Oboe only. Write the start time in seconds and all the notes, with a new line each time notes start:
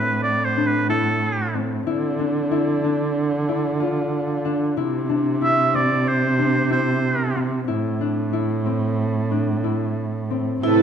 Already playing: B4
0.23 D5
0.45 C5
0.67 B4
0.89 A4
5.44 E5
5.75 D5
6.08 C5
6.72 C5